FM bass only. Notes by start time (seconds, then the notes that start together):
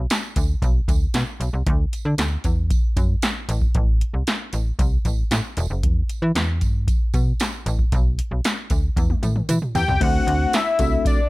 0.36 D2
0.62 B1
0.88 D2
1.14 B2
1.40 B1
1.53 C2
1.67 D2
2.05 D3
2.18 D2
2.45 E2
2.97 F#2
3.49 A1
3.75 A1
4.14 C2
4.53 A1
4.79 C2
5.05 A1
5.31 A2
5.57 E1
5.70 F#1
5.83 E2
6.22 E3
6.35 E2
6.62 G2
7.14 B2
7.66 A1
7.92 B1
8.31 B1
8.71 D2
8.97 E2
9.23 A2
9.49 E3
9.75 E2
9.88 C2
10.01 D2
10.27 D2
10.79 C2